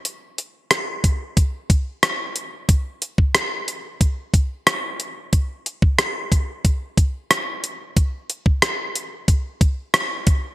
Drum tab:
HH |x-x-x-x-x-x-x-x-|x-x-x-x-x-x-x-x-|x-x-x-x-x-x-x-x-|x-x-x-x-x-x-x-x-|
SD |----r-------r---|----r-------r---|----r-------r---|----r-------r---|
BD |------o-o-o-----|o--o----o-o-----|o--o--o-o-o-----|o--o----o-o---o-|